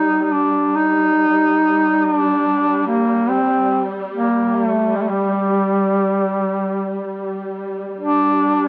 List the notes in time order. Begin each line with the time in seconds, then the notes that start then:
Already playing: G3 D#4
0.23 D#4
0.32 D4
0.75 D#4
2.04 D4
2.87 A#3
3.29 C4
4.14 A#3
4.55 A3
4.96 G3
5.02 A3
5.10 G3
8.00 G3 D4